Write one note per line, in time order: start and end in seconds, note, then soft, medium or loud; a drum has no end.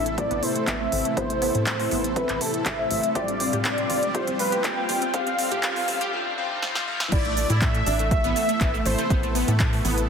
0.00 0.26 A1 loud
0.00 6.09 C3 medium
0.00 3.11 E3 medium
0.00 3.11 A3 medium
0.00 3.11 E4 medium
0.00 1.15 A4 medium
0.00 0.20 E5 loud
0.00 riser medium
0.06 0.15 A3 medium
0.06 closed hi-hat medium
0.18 0.31 A2 loud
0.18 0.27 A3 medium
0.18 0.31 A3 medium
0.18 0.31 C4 medium
0.18 0.31 E4 medium
0.18 0.31 C5 medium
0.18 0.44 D5 loud
0.18 0.31 E5 loud
0.18 kick loud
0.18 closed hi-hat medium
0.31 0.40 A1 medium
0.31 0.39 B3 loud
0.31 closed hi-hat soft
0.43 0.64 A2 medium
0.43 0.52 A3 medium
0.43 0.64 A3 medium
0.43 0.64 C4 medium
0.43 0.64 E4 medium
0.43 0.64 C5 medium
0.43 0.69 C5 medium
0.43 0.64 E5 medium
0.43 open hi-hat loud
0.56 0.64 A3 medium
0.56 closed hi-hat medium
0.67 0.87 A1 medium
0.67 0.77 B3 medium
0.67 1.17 E5 loud
0.67 kick loud
0.67 clap loud
0.67 closed hi-hat medium
0.80 0.90 A2 medium
0.80 0.89 A3 medium
0.80 0.90 A3 medium
0.80 0.90 C4 medium
0.80 0.90 E4 medium
0.80 0.90 C5 medium
0.80 0.90 E5 medium
0.92 1.02 A1 loud
0.92 1.14 A2 medium
0.92 1.02 A3 medium
0.92 1.14 A3 medium
0.92 1.14 C4 medium
0.92 1.14 E4 medium
0.92 1.14 C5 medium
0.92 1.14 E5 medium
0.92 open hi-hat loud
1.05 1.14 A3 medium
1.05 closed hi-hat medium
1.17 1.50 A1 loud
1.17 1.38 A2 medium
1.17 1.38 A3 medium
1.17 1.26 B3 medium
1.17 1.38 C4 medium
1.17 1.38 E4 medium
1.17 3.13 A4 medium
1.17 1.38 C5 medium
1.17 1.63 C5 loud
1.17 1.38 E5 medium
1.17 kick loud
1.17 closed hi-hat medium
1.30 1.39 A3 medium
1.30 closed hi-hat soft
1.42 1.76 A2 medium
1.42 1.76 A3 medium
1.42 1.51 B3 medium
1.42 1.76 C4 medium
1.42 1.76 E4 medium
1.42 1.76 C5 medium
1.42 1.76 E5 medium
1.42 open hi-hat loud
1.55 1.87 A2 loud
1.55 1.63 A3 medium
1.55 closed hi-hat medium
1.66 1.76 A3 medium
1.66 2.18 C5 loud
1.66 kick loud
1.66 clap loud
1.66 closed hi-hat medium
1.80 1.90 A2 medium
1.80 1.90 A3 medium
1.80 1.88 A3 medium
1.80 1.90 C4 medium
1.80 1.90 E4 medium
1.80 1.90 C5 medium
1.80 1.90 E5 medium
1.80 open hi-hat medium
1.91 2.25 A1 loud
1.91 2.05 A2 medium
1.91 2.05 A3 medium
1.91 3.06 B3 medium
1.91 2.05 C4 medium
1.91 2.05 E4 medium
1.91 2.05 C5 medium
1.91 2.05 E5 medium
1.91 open hi-hat loud
2.04 closed hi-hat medium
2.16 2.30 A2 loud
2.16 2.30 A3 medium
2.16 2.30 C4 medium
2.16 2.30 E4 medium
2.16 2.43 B4 loud
2.16 2.30 C5 medium
2.16 2.30 E5 loud
2.16 kick loud
2.16 closed hi-hat medium
2.29 2.39 A1 medium
2.29 clap soft
2.29 closed hi-hat soft
2.41 2.62 A2 medium
2.41 2.62 A3 medium
2.41 2.62 C4 medium
2.41 2.62 E4 medium
2.41 2.67 A4 medium
2.41 2.62 C5 medium
2.41 2.62 E5 medium
2.41 open hi-hat loud
2.54 closed hi-hat medium
2.66 2.86 A1 medium
2.66 3.15 E5 loud
2.66 kick loud
2.66 clap loud
2.66 closed hi-hat medium
2.79 2.89 A2 medium
2.79 2.89 A3 medium
2.79 2.89 C4 medium
2.79 2.89 E4 medium
2.79 2.89 C5 medium
2.79 2.89 E5 medium
2.90 3.01 A1 loud
2.90 3.12 A3 medium
2.90 3.12 C4 medium
2.90 3.12 E4 medium
2.90 3.12 C5 medium
2.90 3.12 E5 medium
2.90 open hi-hat loud
3.03 closed hi-hat medium
3.15 3.49 A1 medium
3.15 3.36 A2 medium
3.15 6.10 F3 medium
3.15 3.36 G3 medium
3.15 6.10 G3 medium
3.15 3.36 C4 medium
3.15 3.36 F4 medium
3.15 6.10 F4 medium
3.15 3.25 G4 medium
3.15 5.12 G4 medium
3.15 3.36 C5 medium
3.15 3.62 D5 loud
3.15 3.36 F5 medium
3.15 kick loud
3.15 closed hi-hat medium
3.28 3.37 C4 medium
3.28 closed hi-hat soft
3.40 3.75 A2 medium
3.40 3.75 G3 medium
3.40 3.75 C4 medium
3.40 3.50 C4 medium
3.40 3.75 F4 medium
3.40 3.75 C5 medium
3.40 3.75 F5 medium
3.40 open hi-hat loud
3.53 3.86 A2 loud
3.53 3.62 G4 medium
3.53 closed hi-hat medium
3.65 3.74 C4 medium
3.65 4.16 D5 loud
3.65 kick loud
3.65 clap loud
3.65 closed hi-hat medium
3.78 3.88 A2 medium
3.78 3.88 G3 medium
3.78 3.87 C4 medium
3.78 3.88 C4 medium
3.78 3.88 F4 medium
3.78 3.88 C5 medium
3.78 3.88 F5 medium
3.78 closed hi-hat soft
3.90 4.23 A1 loud
3.90 4.03 A2 medium
3.90 4.03 G3 medium
3.90 4.03 C4 medium
3.90 4.03 F4 medium
3.90 3.99 F4 medium
3.90 4.03 C5 medium
3.90 4.03 F5 medium
3.90 open hi-hat loud
4.03 4.11 C4 medium
4.03 closed hi-hat medium
4.15 4.36 A2 medium
4.15 4.36 G3 medium
4.15 4.36 C4 medium
4.15 4.36 F4 medium
4.15 4.24 G4 medium
4.15 4.36 C5 medium
4.15 4.39 C5 loud
4.15 4.36 F5 medium
4.15 kick loud
4.15 closed hi-hat medium
4.27 4.37 A1 medium
4.27 4.36 C4 medium
4.27 closed hi-hat soft
4.39 4.74 A2 medium
4.39 4.74 G3 medium
4.39 4.49 C4 medium
4.39 4.74 C4 medium
4.39 4.74 F4 medium
4.39 4.66 B4 medium
4.39 4.74 C5 medium
4.39 4.74 F5 medium
4.39 open hi-hat loud
4.52 4.61 G4 medium
4.52 closed hi-hat medium
4.64 4.84 A1 loud
4.64 4.74 C4 medium
4.64 5.15 G5 loud
4.64 kick loud
4.64 clap loud
4.64 closed hi-hat medium
4.77 4.87 A2 medium
4.77 4.87 G3 medium
4.77 4.86 C4 medium
4.77 4.87 C4 medium
4.77 4.87 F4 medium
4.77 4.87 C5 medium
4.77 4.87 F5 medium
4.89 4.99 A1 loud
4.89 5.03 A2 medium
4.89 5.03 G3 medium
4.89 5.03 C4 medium
4.89 4.98 F4 medium
4.89 5.03 F4 medium
4.89 5.03 C5 medium
4.89 5.03 F5 medium
4.89 open hi-hat loud
5.02 5.11 C4 medium
5.02 closed hi-hat medium
5.14 5.47 A1 loud
5.14 5.35 A2 medium
5.14 5.35 G3 medium
5.14 5.35 C4 medium
5.14 5.35 F4 medium
5.14 5.23 G4 loud
5.14 6.12 A4 medium
5.14 5.35 C5 medium
5.14 5.35 F5 medium
5.14 5.63 F5 loud
5.14 kick loud
5.14 closed hi-hat medium
5.27 5.35 C4 medium
5.27 closed hi-hat soft
5.39 5.61 A2 medium
5.39 5.61 G3 medium
5.39 5.48 C4 medium
5.39 5.61 C4 medium
5.39 5.61 F4 medium
5.39 5.61 C5 medium
5.39 5.61 F5 medium
5.39 open hi-hat loud
5.51 5.84 A2 loud
5.51 5.60 G4 medium
5.51 closed hi-hat soft
5.63 5.84 A2 medium
5.63 5.84 G3 medium
5.63 5.84 C4 medium
5.63 5.84 F4 medium
5.63 5.73 G4 loud
5.63 5.84 C5 medium
5.63 6.10 F5 loud
5.63 kick loud
5.63 clap loud
5.63 closed hi-hat medium
5.76 5.85 C4 medium
5.76 open hi-hat medium
5.88 6.13 A1 loud
5.88 6.11 A2 medium
5.88 6.11 G3 medium
5.88 6.11 C4 medium
5.88 5.98 C4 medium
5.88 6.11 F4 medium
5.88 6.11 C5 medium
5.88 6.11 F5 medium
5.88 open hi-hat loud
6.01 6.10 G4 medium
6.01 closed hi-hat medium
6.13 6.34 A2 medium
6.13 6.34 G3 medium
6.13 6.34 C4 medium
6.13 6.34 F4 medium
6.13 6.34 C5 medium
6.13 6.34 F5 loud
6.38 6.59 A2 medium
6.38 6.59 G3 medium
6.38 6.59 C4 medium
6.38 6.59 F4 medium
6.38 6.59 C5 medium
6.38 6.59 F5 medium
6.62 6.84 A2 medium
6.62 6.84 G3 medium
6.62 6.84 C4 medium
6.62 6.84 F4 medium
6.62 6.84 C5 medium
6.62 6.84 F5 loud
6.62 snare medium
6.75 snare medium
6.87 7.08 A2 medium
6.87 7.08 G3 medium
6.87 7.08 C4 medium
6.87 7.08 F4 medium
6.87 7.08 C5 medium
6.87 7.08 F5 loud
7.00 snare medium
7.12 7.45 A1 loud
7.12 10.09 C3 medium
7.12 10.09 E3 medium
7.12 10.09 A3 medium
7.12 10.09 E4 medium
7.12 7.22 E4 loud
7.12 10.09 A4 medium
7.12 7.58 D5 loud
7.12 kick loud
7.12 closed hi-hat medium
7.12 crash loud
7.12 shaker soft
7.25 7.34 A3 medium
7.25 closed hi-hat soft
7.37 7.46 A3 medium
7.37 open hi-hat loud
7.37 shaker medium
7.50 7.82 A2 loud
7.50 7.58 E4 loud
7.50 closed hi-hat medium
7.50 shaker soft
7.61 7.71 A3 medium
7.61 8.08 E5 loud
7.61 kick loud
7.61 clap loud
7.61 closed hi-hat medium
7.61 shaker soft
7.75 7.83 A3 medium
7.75 closed hi-hat soft
7.86 8.20 A1 loud
7.86 7.96 D4 loud
7.86 open hi-hat loud
7.86 shaker medium
7.99 8.08 A3 medium
7.99 closed hi-hat medium
7.99 shaker soft
8.11 8.21 A3 medium
8.11 8.87 E5 loud
8.11 8.82 E5 loud
8.11 kick loud
8.11 closed hi-hat medium
8.11 shaker soft
8.24 8.34 A1 medium
8.24 8.33 B3 loud
8.24 closed hi-hat soft
8.24 shaker soft
8.36 8.46 A3 medium
8.36 open hi-hat loud
8.36 shaker medium
8.49 8.58 A3 medium
8.49 closed hi-hat medium
8.49 shaker soft
8.61 8.81 A1 loud
8.61 8.70 B3 medium
8.61 kick loud
8.61 clap loud
8.61 closed hi-hat medium
8.61 shaker soft
8.74 8.82 A3 medium
8.74 shaker soft
8.86 8.96 A1 loud
8.86 8.95 A3 medium
8.86 9.32 C5 medium
8.86 9.35 C5 loud
8.86 open hi-hat loud
8.86 shaker medium
8.98 9.07 A3 medium
8.98 closed hi-hat medium
8.98 shaker soft
9.10 9.44 A1 loud
9.10 9.20 B3 medium
9.10 kick loud
9.10 closed hi-hat medium
9.10 shaker soft
9.23 9.32 A3 medium
9.23 closed hi-hat soft
9.23 shaker soft
9.35 9.45 B3 loud
9.35 open hi-hat loud
9.35 shaker medium
9.48 9.81 A2 loud
9.48 9.57 A3 medium
9.48 closed hi-hat medium
9.48 shaker soft
9.60 9.69 A3 medium
9.60 kick loud
9.60 clap loud
9.60 closed hi-hat medium
9.60 shaker soft
9.73 9.82 A3 medium
9.73 open hi-hat medium
9.73 shaker soft
9.85 10.09 A1 loud
9.85 10.09 B3 medium
9.85 open hi-hat loud
9.85 shaker medium
9.98 closed hi-hat medium
9.98 shaker soft